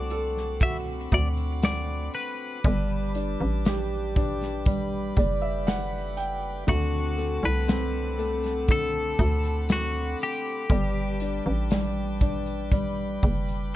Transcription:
Already playing: fm bass C2, grand piano D3 A3 F#4, tonewheel organ C4 F#5 A5 D6, clean electric guitar D5
0.10 grand piano A4, closed hi-hat
0.37 snare
0.60 grand piano F#4, clean electric guitar E5, tonewheel organ B5, kick, closed hi-hat
1.12 fm bass D2, clean electric guitar D5, kick, closed hi-hat
1.37 closed hi-hat
1.62 clean electric guitar D5, snare, closed hi-hat
2.14 clean electric guitar B4, closed hi-hat
2.64 fm bass G1, grand piano G3, tonewheel organ G4 B4 A5, kick, closed hi-hat
3.15 grand piano D4, closed hi-hat
3.41 fm bass A1
3.65 grand piano G4, snare, closed hi-hat
4.16 grand piano D4, kick, closed hi-hat
4.41 snare, closed hi-hat
4.66 grand piano G3, tonewheel organ B5, kick, closed hi-hat
5.16 fm bass F#1, grand piano D5, kick, closed hi-hat
5.42 grand piano E5
5.67 grand piano F#5, snare, closed hi-hat
6.17 grand piano G5, closed hi-hat
6.67 fm bass D2, grand piano D3, tonewheel organ C4 F#5 A5, clean electric guitar F#4, kick, closed hi-hat
7.17 grand piano A3, closed hi-hat
7.43 fm bass C2, clean electric guitar B4
7.68 grand piano C4, snare, closed hi-hat
8.19 grand piano A3, closed hi-hat
8.44 snare, closed hi-hat
8.68 grand piano D3, clean electric guitar A4, tonewheel organ B5, kick, closed hi-hat
9.19 fm bass D2, kick, closed hi-hat
9.44 closed hi-hat
9.69 clean electric guitar F#4, snare, closed hi-hat
10.19 clean electric guitar G4, closed hi-hat
10.69 fm bass G1, grand piano G3, tonewheel organ B4 G5 A5 D6, kick, closed hi-hat
11.20 grand piano D4, closed hi-hat
11.46 fm bass A1
11.71 grand piano G3, snare, closed hi-hat
12.21 grand piano D4, kick, closed hi-hat
12.46 closed hi-hat
12.71 grand piano G3, tonewheel organ B5, kick, closed hi-hat
13.23 fm bass F#1, kick, closed hi-hat
13.48 closed hi-hat

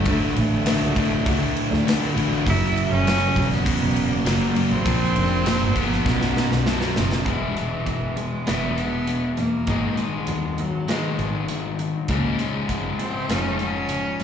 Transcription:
Already playing: cello A3
0.05 double bass D2, overdriven electric guitar D2 A2 D3, kick, crash
0.36 double bass A1, cello A3, crash
0.66 overdriven electric guitar D2 A2 D3, snare, crash
0.81 double bass C#2
0.96 overdriven electric guitar D2 A2 D3, kick, crash
1.26 double bass C#2, overdriven electric guitar D2 A2 D3, kick, crash
1.57 crash
1.71 double bass D2, snare
1.86 overdriven electric guitar D2 A2 D3, snare, crash
2.15 double bass A1, overdriven electric guitar D2 A2 D3, crash
2.46 double bass F#1, overdriven electric guitar F#2 C#3 F#3, cello E4, kick, crash
2.77 crash
2.87 double bass F#1, cello C#4
3.06 overdriven electric guitar F#2 C#3 F#3, snare, crash
3.35 double bass E1, overdriven electric guitar F#2 C#3 F#3, kick, crash
3.53 cello B3, snare
3.65 overdriven electric guitar F#2 C#3 F#3, kick, crash
3.82 double bass E1
3.96 crash
4.12 cello A#3
4.25 double bass F#1, overdriven electric guitar F#2 C#3 F#3, cello A#3, snare, crash
4.56 overdriven electric guitar F#2 C#3 F#3, crash
4.71 double bass A1, cello C4
4.85 double bass A#1, overdriven electric guitar A#2 F3 A#3, kick, crash
5.16 double bass F1, crash
5.45 overdriven electric guitar A#2 F3 A#3, snare, crash
5.62 double bass G1
5.76 overdriven electric guitar A#2 F3 A#3, cello B3, kick, crash
5.93 snare
6.06 double bass B1, overdriven electric guitar B1 F#2 B2, kick, snare
6.22 snare
6.37 snare
6.51 double bass B1, snare
6.66 overdriven electric guitar B1 F#2 B2, snare
6.81 snare
6.96 double bass F#1, overdriven electric guitar B1 F#2 B2, snare
7.12 snare
7.25 double bass E1, overdriven electric guitar E2 B2 E3 G#3 B3, clean electric guitar E2 B2 E3, cello G#3, kick, closed hi-hat
7.29 overdriven electric guitar E4
7.55 clean electric guitar E2 B2, cello E3, closed hi-hat
7.86 clean electric guitar E2 B2, kick, closed hi-hat
8.16 clean electric guitar E2 B2, cello G#3, closed hi-hat
8.46 double bass E1, overdriven electric guitar E2 B2 E3 G#3 B3, clean electric guitar E2 B2 E3, cello B3, snare, closed hi-hat
8.51 overdriven electric guitar E4
8.75 clean electric guitar E2 B2, cello B3, closed hi-hat
9.07 clean electric guitar E2 B2, closed hi-hat
9.37 clean electric guitar E2 B2, double bass E2, cello A#3, closed hi-hat
9.67 double bass G#1, overdriven electric guitar G#2 D#3 G#3 B3 D#4, clean electric guitar G#2 D#3 G#3, kick, closed hi-hat
9.71 overdriven electric guitar G#4
9.97 clean electric guitar G#2 D#3, cello G#3, closed hi-hat
10.27 double bass D#2, clean electric guitar G#2 D#3, closed hi-hat
10.58 clean electric guitar G#2 D#3, cello F#3, closed hi-hat
10.87 overdriven electric guitar G#2 D#3 G#3 B3 D#4 G#4, clean electric guitar G#2 D#3 G#3, cello G#3, snare, closed hi-hat
11.18 double bass G#1, clean electric guitar G#2 D#3, closed hi-hat
11.48 clean electric guitar G#2 D#3, closed hi-hat
11.79 clean electric guitar G#2 D#3, closed hi-hat
12.08 overdriven electric guitar C#2 G#2 C#3 F3 G#3 C#4, clean electric guitar C#2 G#2 C#3, double bass C#2, cello A#3, kick, closed hi-hat
12.39 clean electric guitar C#2 G#2, cello G#3, closed hi-hat
12.69 clean electric guitar C#2 G#2, kick, closed hi-hat
12.99 clean electric guitar C#2 G#2, cello C4, closed hi-hat
13.28 double bass F1, overdriven electric guitar C#2 G#2 C#3 F3 G#3, clean electric guitar C#2 G#2 C#3, cello C#4, snare, closed hi-hat
13.32 overdriven electric guitar C#4
13.59 clean electric guitar C#2 G#2, cello C#4, closed hi-hat
13.89 clean electric guitar C#2 G#2, closed hi-hat
14.20 clean electric guitar C#2 G#2, closed hi-hat

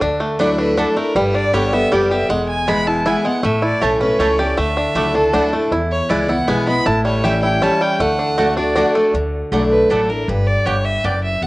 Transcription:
0.01 upright bass D2, steel-string acoustic guitar D3, five-string banjo D4
0.20 five-string banjo A3
0.39 steel-string acoustic guitar F#3 A3 D4 E4, mandolin A3 E4 D5 F#5, five-string banjo D4
0.59 five-string banjo D4, fiddle B4
0.77 steel-string acoustic guitar F#3 A3 D4 E4, mandolin A3 E4 D5 F#5, five-string banjo D4, fiddle A4
0.96 five-string banjo A3, steel-string acoustic guitar D4 E4, fiddle A#4
1.15 upright bass G1, steel-string acoustic guitar G2, five-string banjo G3, fiddle B4
1.35 five-string banjo D4, fiddle D5
1.53 upright bass G1, steel-string acoustic guitar D3 G3 B3 G4, five-string banjo G3, mandolin B3 G4 D5 G5, fiddle C#5
1.73 five-string banjo B3, steel-string acoustic guitar B3 G4, fiddle E5
1.91 upright bass F#1, steel-string acoustic guitar D3 G3 B3 G4, five-string banjo G3, mandolin B3 G4 D5 G5, fiddle D5
2.10 steel-string acoustic guitar B3 G4, five-string banjo G4, fiddle E5
2.29 upright bass E1, steel-string acoustic guitar E2, five-string banjo G#3, fiddle F#5
2.49 fiddle G#5
2.67 steel-string acoustic guitar E3 G#3 B3 E4, five-string banjo G#3, mandolin B3 E4 B4 G#5, fiddle B5
2.87 five-string banjo E4, fiddle A5
3.06 steel-string acoustic guitar E3 G#3 B3 E4, mandolin B3 E4 B4 G#5, five-string banjo E4, fiddle G#5
3.25 five-string banjo G#3, steel-string acoustic guitar B3 E4, fiddle F#5
3.43 upright bass A1, steel-string acoustic guitar A2, five-string banjo A3, fiddle E5
3.62 five-string banjo E4, fiddle D5
3.81 upright bass B1, steel-string acoustic guitar E3 A3 C#4 E4, mandolin A3 E4 C#5 A5, five-string banjo A3, fiddle C#5
4.00 five-string banjo C#4, steel-string acoustic guitar C#4 E4, fiddle B4
4.19 upright bass C#2, steel-string acoustic guitar E3 A3 C#4 E4, mandolin A3 E4 C#5 A5, five-string banjo A3, fiddle C#5
4.38 steel-string acoustic guitar C#4 E4, five-string banjo G4, fiddle D5
4.58 upright bass D2, steel-string acoustic guitar D3, five-string banjo A3, fiddle E5
4.77 five-string banjo D4
4.95 upright bass C#2, steel-string acoustic guitar F#3 A3 D4 E4, mandolin A3 E4 D5 F#5, five-string banjo A3
5.15 five-string banjo D4, steel-string acoustic guitar D4 E4, fiddle A4
5.33 upright bass D2, steel-string acoustic guitar F#3 A3 D4 E4, mandolin A3 E4 D5 F#5, five-string banjo D4
5.53 five-string banjo A3, steel-string acoustic guitar D4 E4
5.71 upright bass E2, steel-string acoustic guitar E2, five-string banjo E4
5.91 fiddle C#5
6.09 upright bass C#2, steel-string acoustic guitar E3 G#3 B3 E4, mandolin B3 E4 B4 G#5, five-string banjo E4, fiddle D5
6.28 steel-string acoustic guitar B3 E4, five-string banjo E4, fiddle F#5
6.47 upright bass B1, steel-string acoustic guitar E3 G#3 B3 E4, mandolin B3 E4 B4 G#5, five-string banjo B3, fiddle G#5
6.67 five-string banjo G#3, steel-string acoustic guitar B3 E4, fiddle B5
6.86 upright bass A1, steel-string acoustic guitar A2, five-string banjo E4, fiddle A5
7.05 five-string banjo G3, fiddle C#5
7.24 steel-string acoustic guitar E3 G3 C#4 E4, mandolin A3 E4 C#5 G5, five-string banjo G4, fiddle E5
7.43 five-string banjo E4, fiddle G5
7.62 steel-string acoustic guitar E3 G3 C#4 E4, mandolin A3 E4 C#5 G5, five-string banjo C#4, fiddle A5
7.81 five-string banjo G3, fiddle G5
8.00 upright bass D2, steel-string acoustic guitar D3, five-string banjo A3, fiddle F#5
8.19 five-string banjo D4
8.38 steel-string acoustic guitar D3 A3 D4 F#4, mandolin A3 F#4 D5 F#5, five-string banjo A3
8.57 five-string banjo D4, steel-string acoustic guitar D4 F#4, fiddle D5
8.76 steel-string acoustic guitar D3 A3 D4 F#4, mandolin A3 F#4 D5 F#5, five-string banjo D4
8.95 five-string banjo A3, steel-string acoustic guitar D4 F#4
9.14 upright bass D2, steel-string acoustic guitar D3
9.52 upright bass B1, steel-string acoustic guitar F#3 A3 D4 E4, mandolin A3 E4 D5 F#5
9.72 fiddle B4
9.90 upright bass A1, steel-string acoustic guitar F#3 A3 D4 E4, mandolin A3 E4 D5 F#5, fiddle A4
10.09 steel-string acoustic guitar D4 E4, fiddle A#4
10.28 upright bass G1, steel-string acoustic guitar G2, fiddle B4
10.47 fiddle D5
10.65 upright bass G1, steel-string acoustic guitar G2, mandolin B3 G4 D5 G5, fiddle C#5
10.85 fiddle E5
11.04 upright bass F#1, steel-string acoustic guitar F#2, mandolin B3 G4 D5 G5, fiddle D5
11.23 fiddle E5
11.42 upright bass E1, steel-string acoustic guitar E2, fiddle F#5

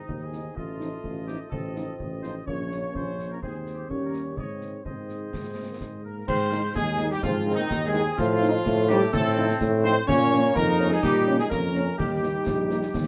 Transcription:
Already playing: euphonium C4, trumpet section D#4, woodwind section D#4 D#5
0.08 tuba D#2, concert bass drum
0.24 trumpet section G#4
0.32 french horn section D#3 C4 D#4, snare
0.55 tuba A1, euphonium A3, trumpet section F4, woodwind section F4 D#5, concert bass drum
0.80 french horn section F3 C4 D#4, snare
1.03 tuba A1, concert bass drum
1.27 french horn section F3 C4 D#4, trumpet section G4, snare
1.50 tuba A1, euphonium C4, trumpet section A4, concert bass drum
1.75 french horn section F3 C4 D#4, snare
2.00 tuba A1, concert bass drum
2.22 french horn section F3 C4 D#4, trumpet section C5, snare
2.46 tuba A#1, french horn section F3 A#3 C#4, euphonium A#3, woodwind section F4 C#5, trumpet section C#5, concert bass drum
2.72 snare
2.94 tuba A#1, euphonium C#4, trumpet section C5, concert bass drum
3.19 snare
3.31 trumpet section A#4
3.41 tuba D#2, french horn section D#3 G#3 C4, euphonium C4, trumpet section G#4, woodwind section G#4 C5, concert bass drum
3.66 snare
3.73 trumpet section G4
3.89 tuba D#2, french horn section D#3 G3 C#4, euphonium A#3, woodwind section G4 C#5, concert bass drum
4.05 trumpet section A#4
4.14 snare
4.37 tuba G#2, french horn section D#3 G#3 C4, euphonium G#3, woodwind section G#4 D#5, trumpet section C#5, concert bass drum
4.61 snare
4.84 tuba G#2, french horn section D#3 G#3 C4, euphonium D#4, woodwind section G#4 D#5, trumpet section C5, concert bass drum
5.09 snare
5.33 tuba G#2, euphonium C4, concert bass drum, snare
5.70 euphonium A#3
5.80 tuba G#2, euphonium G#3, concert bass drum, snare
6.03 euphonium A#3, trumpet section A#4, woodwind section A#4, flute section A#5
6.27 tuba G#2, euphonium C4, trumpet section C5, woodwind section C5, flute section C6, concert bass drum, crash
6.52 french horn section D#3 G#3 D#4, snare
6.75 tuba D#2, euphonium G#3, trombone section D#4, trumpet section G#4, woodwind section G#4, flute section G#5, concert bass drum, snare
6.99 french horn section D#3 G#3 D#4, snare
7.11 euphonium G3, woodwind section G4, trumpet section G4, flute section G5, snare
7.23 tuba G#2, euphonium F3, trombone section C4, trumpet section F4, woodwind section F4, flute section F5, concert bass drum, snare
7.47 french horn section D#3 G#3 D#4
7.55 euphonium D#3, woodwind section D#4, trumpet section D#4, flute section D#5, snare
7.71 tuba D#2, concert bass drum, snare
7.86 euphonium G#3, woodwind section G#4, trumpet section G#4, flute section G#5
7.94 french horn section D#3 G#3 D#4, snare
8.17 tuba A2, euphonium F3, woodwind section F4, trumpet section F4, flute section F5, concert bass drum, crash
8.42 french horn section F3 C4 D#4, snare
8.66 tuba A2, trombone section A3, concert bass drum, snare
8.89 french horn section F3 C4 D#4, euphonium G3, woodwind section G4, trumpet section G4, flute section G5, snare
9.01 snare
9.13 tuba A2, euphonium A3, trombone section C4, woodwind section A4, trumpet section A4, flute section A5, concert bass drum, snare
9.37 french horn section F3 C4 D#4
9.49 snare
9.61 tuba A2, concert bass drum, snare
9.84 french horn section F3 C4 D#4, euphonium C4, woodwind section C5, trumpet section C5, flute section C6, snare
10.07 tuba A#2, trombone section A#3, euphonium C#4, trumpet section C#5, woodwind section C#5, flute section C#6, concert bass drum, crash
10.31 french horn section F3 A#3 C#4, snare
10.55 tuba F2, euphonium A#3, trombone section D#4, trumpet section A#4, woodwind section A#4, flute section A#5, concert bass drum, snare
10.79 french horn section F3 A#3 C#4, snare
10.90 euphonium G#3, woodwind section G#4, trumpet section G#4, flute section G#5, snare
11.03 tuba A#2, euphonium G3, trumpet section G4, woodwind section G4, flute section G5, concert bass drum, snare
11.27 french horn section F3 A#3 C#4
11.39 euphonium G#3, woodwind section G#4, trumpet section G#4, flute section G#5, snare
11.50 tuba F2, euphonium A#3, trombone section C#4, woodwind section A#4, trumpet section A#4, flute section A#5, concert bass drum, snare
11.74 french horn section F3 A#3 C#4, snare
11.98 tuba D#2, euphonium G3, trombone section D#4, woodwind section G4, trumpet section G4, flute section G5, concert bass drum, crash
12.22 french horn section D#3 A#3 D#4, snare
12.46 tuba A#1, concert bass drum, snare
12.70 french horn section D#3 A#3 D#4, snare
12.82 snare
12.94 tuba D#2, concert bass drum, snare

